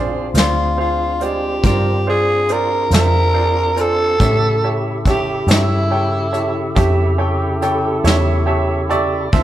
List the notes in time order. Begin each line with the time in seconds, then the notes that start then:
Already playing: A#1 C4 D4 F4 G#4 C5 D5
0.34 D2 F4 G#4 C5 D5, snare, closed hi-hat
0.77 F4 G#4 C5 F5
1.20 G#3 F4 G4 C5 D5, closed hi-hat
1.63 G2 F4 G4 A#4 C5 D5, kick, closed hi-hat
2.07 F4 G#4 C5 D5
2.49 F4 G#4 A#4 C5 D5, closed hi-hat
2.91 F2 F4 G#4 C5 E5, snare, closed hi-hat
2.95 A#4
3.34 F4 G#4 C5 D5
3.76 F4 C5 D5 G#5, closed hi-hat
3.81 A4
4.19 A2 C#3 E4 G4 A4 C#5 E5, kick, closed hi-hat
4.63 G4 A4 C#5 E5
5.05 G4 A4 C#5 E5, kick, closed hi-hat
5.10 G4
5.47 G2 G4 A4 C#5 E5, closed hi-hat
5.51 E4, snare
5.91 G4 A4 C#5 G5
6.32 G4 A4 C#5 E5, closed hi-hat
6.75 F2 G4 A4 C#5 E5, kick, closed hi-hat
7.18 G4 A4 C#5 G5
7.62 G4 A4 C#5 G5, closed hi-hat
8.04 E2 G4 A4 C#5 E5, snare, closed hi-hat
8.46 G4 A4 C#5 E5
8.89 G4 A4 D5 E5 C#6, closed hi-hat
9.32 D2 C4 F4 A4 C5 E5, kick, closed hi-hat